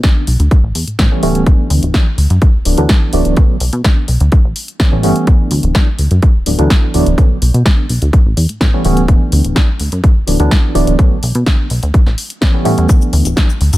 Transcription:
0.03 D3 F#3 A3 B3 D4, kick, snare, closed hi-hat
0.27 B1, open hi-hat
0.40 D2, closed hi-hat
0.51 kick, closed hi-hat
0.64 A1
0.75 E2, open hi-hat
0.87 A2, closed hi-hat
0.99 A2 E3 G3 A3 B3 C#4, kick, snare, closed hi-hat
1.11 E3 G3 A3 B3 C#4
1.23 D1 E3 G3 A3 B3 C#4, open hi-hat
1.35 closed hi-hat
1.46 E3, kick, closed hi-hat
1.70 D2, open hi-hat
1.83 D1, closed hi-hat
1.94 E3 F#3 A3 B3 D4, kick, snare, closed hi-hat
2.18 D2, open hi-hat
2.30 F#2, closed hi-hat
2.42 kick, closed hi-hat
2.54 D1
2.65 D1 E3 F#3 A3 B3 D4, open hi-hat
2.78 D2 E3 F#3 A3 B3 D4, closed hi-hat
2.89 kick, snare, closed hi-hat
3.13 D1 E3 F#3 A3 B3 D4, open hi-hat
3.25 D1, closed hi-hat
3.37 D3 F#3 A3 B3 C#4, kick, closed hi-hat
3.49 B1
3.60 B1, open hi-hat
3.73 B2, closed hi-hat
3.84 D3 F#3 A3 B3 D4, kick, snare, closed hi-hat
4.08 B1, open hi-hat
4.20 D2, closed hi-hat
4.32 kick, closed hi-hat
4.44 A1
4.56 open hi-hat
4.68 closed hi-hat
4.79 E3 G3 A3 B3 C#4, kick, snare, closed hi-hat
4.92 A1 E3 G3 A3 B3 C#4
5.03 G1 E3 G3 A3 B3 C#4, open hi-hat
5.16 closed hi-hat
5.27 kick, closed hi-hat
5.51 D2, open hi-hat
5.63 D1, closed hi-hat
5.75 E3 F#3 A3 B3 D4, kick, snare, closed hi-hat
5.99 D2, open hi-hat
6.11 F#2, closed hi-hat
6.22 kick, closed hi-hat
6.35 D1
6.46 D1 E3 F#3 A3 B3 D4, open hi-hat
6.58 D2 E3 F#3 A3 B3 D4, closed hi-hat
6.70 kick, snare, closed hi-hat
6.94 D1 E3 F#3 A3 B3 D4, open hi-hat
7.06 D1, closed hi-hat
7.18 D3 F#3 A3 B3 C#4, kick, closed hi-hat
7.31 B1
7.42 B1, open hi-hat
7.54 B2, closed hi-hat
7.65 D3 F#3 A3 B3 D4, kick, snare, closed hi-hat
7.89 B1, open hi-hat
8.02 D2, closed hi-hat
8.13 kick, closed hi-hat
8.26 A1
8.37 E2, open hi-hat
8.49 closed hi-hat
8.61 A2 E3 G3 A3 B3 C#4, kick, snare, closed hi-hat
8.73 E3 G3 A3 B3 C#4
8.85 D1 E3 G3 A3 B3 C#4, open hi-hat
8.97 closed hi-hat
9.08 E3 A3, kick, closed hi-hat
9.32 D2, open hi-hat
9.45 D1, closed hi-hat
9.55 E3 F#3 A3 B3 D4, kick, snare, closed hi-hat
9.80 D2, open hi-hat
9.92 F#2, closed hi-hat
10.04 kick, closed hi-hat
10.16 D1
10.27 D1 E3 F#3 A3 B3 D4, open hi-hat
10.39 D2 E3 F#3 A3 B3 D4, closed hi-hat
10.51 kick, snare, closed hi-hat
10.75 D1 E3 F#3 A3 B3 D4, open hi-hat
10.87 D1, closed hi-hat
10.99 F#3 A3 B3 C#4, kick, closed hi-hat
11.11 B1
11.23 B1, open hi-hat
11.35 B2, closed hi-hat
11.46 D3 F#3 A3 B3 D4, kick, snare, closed hi-hat
11.70 B1, open hi-hat
11.83 D2, closed hi-hat
11.94 kick, closed hi-hat
12.06 A1, snare
12.18 open hi-hat
12.30 closed hi-hat
12.41 E3 G3 A3 B3 C#4, kick, snare, closed hi-hat
12.53 E3 G3 A3 B3 C#4
12.64 A2 E3 G3 A3 B3 C#4, open hi-hat
12.78 E2, closed hi-hat
12.88 E3 F#3 A3, kick, closed hi-hat, cabasa
13.02 cabasa
13.13 D2, open hi-hat
13.25 D1, closed hi-hat, cabasa
13.36 E3 F#3 A3 B3 D4, kick, snare, closed hi-hat, cabasa
13.50 cabasa
13.61 D2, open hi-hat
13.73 F#2, closed hi-hat, cabasa

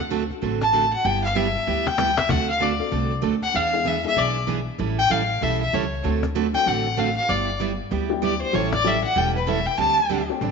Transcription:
Already playing: D2
0.10 D3 A3 C4 F#4 A4, cajon slap
0.31 cajon slap
0.42 A1 D3 A3 C4 F#4 A4, cajon slap
0.61 A5, cajon slap
0.73 D3 A3 C4 F#4 A4, cajon slap
0.93 F#5, cajon slap
1.04 G1 G3 B3 E4 G4 G5, cajon slap
1.24 F5
1.35 G3 B3 E4 G4 E5, cajon slap
1.56 cajon slap
1.67 D2 G3 B3 E4 G4
1.87 G5, cajon slap
1.98 G3 B3 E4 G4, cajon slap
2.17 E5, cajon slap
2.29 D2 D3 A3 C4 F#4 A4 F#5, cajon bass
2.49 F5
2.60 D3 A3 C4 F#4 A4 D5, cajon slap
2.79 A3 C4 D4 F#4 A4, cajon slap
2.92 C2 D3 A3 C4 F#4 A4, cajon slap
3.22 D2 D3 A3 C4 F#4 A4, cajon slap
3.42 F#5, cajon slap
3.54 E2 E3 B3 D4 G#4 F5, cajon slap
3.73 G#3 B3 D4 E4 G#4
3.85 E3 B3 D4 G#4 E5, cajon slap
4.04 G#3 B3 D4 E4 G#4 E5, cajon slap
4.16 B1 E3 B3 D4 G#4 D5, cajon slap
4.47 E3 B3 D4 G#4, cajon slap
4.78 A1 E3 G3 C#4 E4 A4, cajon slap
4.99 G5
5.10 A1 E3 G3 C#4 E4 A4 F5, cajon slap
5.41 B1 E3 G3 C#4 E4 A4 E5, cajon slap
5.61 E5
5.73 C#2 E3 G3 C#4 E4 A4 C#5, cajon slap
6.04 D2 D3 A3 C4 F#4 A4, cajon slap
6.23 cajon slap
6.35 D3 A3 C4 F#4 A4, cajon slap
6.53 F#3 A3 C4 D4 F#4 G5, cajon slap
6.66 A1 D3 A3 C4 F#4 A4 F#5, cajon slap
6.97 D3 A3 C4 F#4 A4 F5, cajon slap
7.17 F5
7.28 G1 G3 B3 E4 G4 D5, cajon slap
7.60 G3 B3 E4 G4, cajon slap
7.91 D2 G3 B3 E4 G4, cajon slap
8.09 G3 B3 D4 E4 G4
8.22 G3 B3 E4 G4 D5, cajon slap
8.41 C5
8.52 A1 E3 G3 A3 C#4 E4 G4 A4 C#5, cajon slap
8.73 D5, cajon slap
8.83 E3 G3 A3 C#4 E4 G4 A4 E5, cajon slap
9.04 F#5, cajon slap
9.15 E1 E3 G3 C#4 E4 A4 G5, cajon slap
9.36 B4
9.47 E3 G3 C#4 E4 A4 E5, cajon slap
9.67 G5, cajon slap
9.78 D2 D3 G3 C4 D4 G4 A5, cajon slap
10.09 D3 G3 C4 D4 G4, cajon slap
10.29 G3 A3 C4 D4 G4
10.41 A1 D3 G3 C4 D4 G4, cajon slap

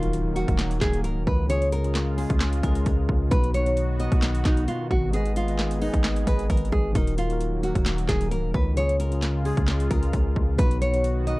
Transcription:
Already playing: D#1 D#3 F#3 A#3 D#4 F4 F#4 A#4, impact
0.00 D#3 D#4 F#4, closed hi-hat
0.05 A#4
0.13 closed hi-hat
0.33 D#3 D#4 F#4, closed hi-hat
0.39 A#4
0.48 D#1, kick, closed hi-hat
0.59 snare, clap, closed hi-hat
0.71 closed hi-hat
0.81 D#1 G#4, kick, snare, clap, closed hi-hat
0.93 closed hi-hat
1.04 C#1 A#4, closed hi-hat
1.16 D#1
1.27 C#2 B4, kick
1.47 C#3 G#3 C#4 F4 C#5, closed hi-hat
1.52 G#4
1.62 closed hi-hat
1.72 A#4, closed hi-hat
1.82 C#3 C#4 F4, closed hi-hat
1.87 G#4
1.95 snare, clap, closed hi-hat
2.15 C#3 C#4 F4 G#4, open hi-hat
2.21 G#4
2.30 C#2, kick, closed hi-hat
2.40 snare, clap, closed hi-hat
2.53 closed hi-hat
2.61 C#2 C#3 C#4 F4 A#4, kick, closed hi-hat
2.66 G#4
2.75 closed hi-hat
2.86 C#2, kick, closed hi-hat
3.09 C#2, kick
3.29 B1 B2 D#3 B3 D#4 F#4 B4, kick, closed hi-hat
3.34 F#4
3.44 closed hi-hat
3.54 C#5, closed hi-hat
3.64 B2 B3 D#4, closed hi-hat
3.69 F#4
3.77 closed hi-hat
3.97 B2 B3 D#4 D#5, closed hi-hat
4.03 F#4
4.12 B1, kick, closed hi-hat
4.22 snare, clap, closed hi-hat
4.35 closed hi-hat
4.45 B1 D#4, kick, snare, clap, closed hi-hat
4.57 closed hi-hat
4.68 F4, closed hi-hat
4.91 G#1 F#4, kick
5.11 G#3 B3 G#4 B4, closed hi-hat
5.16 D#5
5.26 closed hi-hat
5.36 F4, closed hi-hat
5.46 G#3 G#4 B4, closed hi-hat
5.51 D#5
5.59 snare, clap, closed hi-hat
5.71 closed hi-hat
5.79 G#3 D#4 G#4 B4, open hi-hat
5.84 D#5
5.94 G#1, kick, closed hi-hat
6.04 snare, clap, closed hi-hat
6.16 closed hi-hat
6.24 G#1 G#3 G#4 B4, kick, closed hi-hat
6.30 D#5
6.39 closed hi-hat
6.50 G#1 A#4, kick, closed hi-hat
6.57 closed hi-hat
6.65 closed hi-hat
6.72 G#1 G#4, kick
6.92 D#1 D#3 F#3 A#3 D#4 F#4, kick, closed hi-hat
6.98 A#4
7.07 closed hi-hat
7.18 F4, closed hi-hat
7.27 D#3 D#4 F#4, closed hi-hat
7.33 A#4
7.41 closed hi-hat
7.61 D#3 D#4 F#4, closed hi-hat
7.66 A#4
7.75 D#1, kick, closed hi-hat
7.86 snare, clap, closed hi-hat
7.98 closed hi-hat
8.08 D#1 G#4, kick, snare, clap, closed hi-hat
8.21 closed hi-hat
8.31 C#1 A#4, closed hi-hat
8.44 D#1
8.54 C#2 B4, kick
8.74 C#3 G#3 C#4 F4 C#5, closed hi-hat
8.80 G#4
8.89 closed hi-hat
9.00 A#4, closed hi-hat
9.09 C#3 C#4 F4, closed hi-hat
9.14 G#4
9.22 snare, clap, closed hi-hat
9.42 C#3 C#4 F4 G#4, open hi-hat
9.48 G#4
9.57 C#2, kick, closed hi-hat
9.68 snare, clap, closed hi-hat
9.80 closed hi-hat
9.88 C#2 C#3 C#4 F4 A#4, kick, closed hi-hat
9.93 G#4
10.03 closed hi-hat
10.13 C#2, kick, closed hi-hat
10.36 C#2, kick
10.56 B1 B2 D#3 B3 D#4 F#4 B4, kick, closed hi-hat
10.62 F#4
10.71 closed hi-hat
10.82 C#5, closed hi-hat
10.91 B2 B3 D#4, closed hi-hat
10.96 F#4
11.04 closed hi-hat
11.24 B2 B3 D#4 D#5, closed hi-hat
11.30 F#4

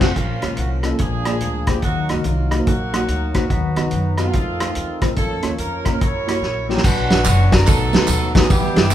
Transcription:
Already playing: A3 C4 F4 C5
0.00 F1 A3 C4 F4 F#4 C5, kick, snare, crash
0.15 A#1 A#2 F3 A#3 C#4 F4 A#4, kick, closed hi-hat
0.42 C#2 A#3 C#4 F4 C#5, cross-stick, closed hi-hat
0.57 C2 F#4, closed hi-hat
0.83 A#3 C#4 F4 A4 D#5, cross-stick, closed hi-hat
0.92 A#3 C#4 F4 A4
0.99 A#1 A#2 F3 G#3 A#3 D4 F4 G#4, kick, closed hi-hat
1.25 A#3 F4 G#4 D5, cross-stick, closed hi-hat
1.41 D2, closed hi-hat
1.67 A#3 F4 G4 G#4 C5, kick, cross-stick, closed hi-hat
1.82 D#2 D#3 F#3 A#3 D#4 F#4 A4, kick, closed hi-hat
1.88 A#4
2.09 C#2 A#3 D#4 F#4 D#5, cross-stick, closed hi-hat
2.24 C2 A#3 F4, closed hi-hat
2.51 A#3 D#4 F#4 D#5, cross-stick, closed hi-hat
2.59 A#3 D#4 F#4 C5
2.67 A#1 A#3 D#4 F#4, kick, closed hi-hat
2.93 A#3 D#4 F#4 F#5, cross-stick, closed hi-hat
3.08 D2, closed hi-hat
3.34 A#3 B3 D#4 F#4 C5, kick, cross-stick, closed hi-hat
3.50 D#2 D#3 F#3 B3 D#4 B4, kick, closed hi-hat
3.76 C#2 B3 D#4 F#4 D#5, cross-stick, closed hi-hat
3.91 F#2, closed hi-hat
4.18 A3 B3 C4 D#4 F4 F#4 D#5, cross-stick, closed hi-hat
4.27 B3 D#4 F#4 F#5
4.33 F2 D#3 A3 C4 D#4 F4 A4, kick, closed hi-hat
4.60 A3 D#4 F4 C5, cross-stick, closed hi-hat
4.75 E2, closed hi-hat
5.01 A3 D#4 F4 C5, kick, cross-stick, closed hi-hat
5.16 F2 F3 A#3 C#4 F4 A4 C#5, kick, closed hi-hat
5.42 D#2 A#3 C#4 F4 C#5, cross-stick, closed hi-hat
5.52 A4
5.58 F2 C#4 F4 A#4, closed hi-hat
5.85 A#3 C#4 F4 A#4, kick, cross-stick, closed hi-hat
5.93 A#3 C#4 F4 A#4 C#5
5.99 F#2 F#3 C#4 E4 A#4 C#5, kick, closed hi-hat
6.27 A#3 E4 F#4 C#5, cross-stick, closed hi-hat
6.42 A#1, snare
6.68 A#3 E4 F#4 G4 A#4 C#5, snare
6.77 snare
6.83 B1 B2 F#3 B3 D4 F#4, kick, crash, tambourine
7.10 A#1 D4 F#4 B4, snare, ride, tambourine
7.25 F#1, clap, ride, tambourine
7.51 D4 F#4 A#4 D5, kick, snare, ride, tambourine
7.66 B1 B2 D#3 F#3 A3 B3 D#4 F#4 A4, kick, clap, ride, tambourine
7.93 D#2 A3 B3 D#4 F#4 B4, snare, ride, tambourine
8.08 D#2, clap, ride, tambourine
8.35 A3 B3 D#4 F#4 G#4 B4, kick, snare, ride, tambourine
8.49 E2 E3 G3 B3 E4 G4, kick, ride, tambourine
8.75 G2 B3 E4 G4, snare, ride, tambourine
8.91 B1, clap, ride, tambourine

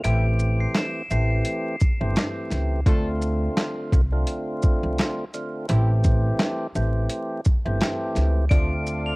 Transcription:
0.04 A1 E3 G3 A3 C4 E4 G4 D7, closed hi-hat
0.39 shaker
0.60 C7
0.75 E7, snare, clap, closed hi-hat
1.11 A1 E3 A3 C4 G4 C7, shaker
1.45 closed hi-hat
1.80 kick, shaker
2.01 G1 E3 A3 C4 G4
2.16 snare, clap, closed hi-hat
2.51 C#2, snare, closed hi-hat, shaker
2.86 D2 D3 A3 C4 D4 F4 A4, kick, closed hi-hat
3.22 shaker
3.57 snare, clap, closed hi-hat
3.92 C2, kick, shaker
4.12 D3 A3 C4 F4
4.27 closed hi-hat
4.63 kick, shaker
4.83 C2
4.98 snare, clap, closed hi-hat
5.34 D3 A3 C4 F4, closed hi-hat, shaker
5.69 A1 E3 G3 A3 C4 E4 G4, closed hi-hat
6.04 kick, closed hi-hat, shaker
6.39 snare, clap, closed hi-hat
6.75 A1 E3 A3 C4 G4, shaker
7.09 closed hi-hat
7.45 kick, shaker
7.65 G1 E3 A3 C4 G4
7.81 snare, clap, closed hi-hat
8.15 C#2, snare, closed hi-hat, shaker
8.49 D2 D3 F3 A3 C4 D4 F4 A4 D5 F5 C6 D7, kick, closed hi-hat
8.86 shaker
9.06 F7

